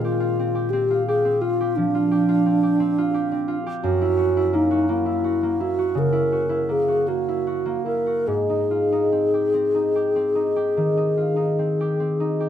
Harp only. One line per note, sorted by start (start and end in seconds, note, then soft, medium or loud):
0.00 3.61 A#2 soft
0.00 3.09 G#3 soft
0.00 0.38 C4 soft
0.00 0.19 F4 soft
0.00 3.27 G#4 soft
0.04 0.33 G4 soft
0.20 0.89 F4 soft
0.39 0.72 C4 soft
0.55 1.07 G4 soft
0.73 1.24 C4 soft
0.90 1.40 F4 soft
1.08 1.59 G4 soft
1.25 2.45 C4 soft
1.41 1.93 F4 soft
1.61 2.10 G4 soft
1.77 3.87 F3 soft
1.95 2.27 F4 soft
2.11 2.41 G4 soft
2.29 2.97 F4 soft
2.46 2.79 C4 soft
2.63 3.13 G4 soft
2.80 3.30 C4 soft
2.98 3.47 F4 soft
3.14 3.65 G4 soft
3.32 3.86 C4 soft
3.48 3.86 F4 soft
3.66 3.87 G4 soft
3.83 7.73 F#2 soft
4.01 4.36 E4 soft
4.17 4.48 F#4 soft
4.37 5.05 E4 soft
4.53 4.88 A#3 soft
4.71 5.23 F#4 soft
4.89 5.42 A#3 soft
5.06 5.59 E4 soft
5.24 5.77 F#4 soft
5.43 6.68 A#3 soft
5.60 6.11 E4 soft
5.79 6.31 F#4 soft
5.95 8.29 C#3 soft
6.12 6.48 E4 soft
6.32 6.64 F#4 soft
6.49 7.27 E4 soft
6.69 7.07 A#3 soft
6.88 7.46 F#4 soft
7.08 7.64 A#3 soft
7.28 7.84 E4 soft
7.47 8.05 F#4 soft
7.66 8.30 A#3 soft
7.86 8.30 E4 soft
8.06 8.30 F#4 soft
8.27 12.17 G#2 soft
8.50 8.91 D#4 soft
8.71 9.06 F4 soft
8.92 9.73 D#4 soft
9.12 9.53 C4 soft
9.34 9.94 G4 soft
9.54 10.15 C4 soft
9.75 10.34 D#4 soft
9.95 10.55 G4 soft
10.16 11.58 C4 soft
10.35 10.96 D#4 soft
10.56 11.79 G4 soft
10.77 12.49 D#3 soft
10.97 11.35 D#4 soft
11.17 11.52 F4 soft
11.36 12.19 D#4 soft
11.59 11.99 C4 soft
11.81 12.39 G4 soft
12.00 12.49 C4 soft
12.20 12.49 D#4 soft
12.40 12.49 G4 soft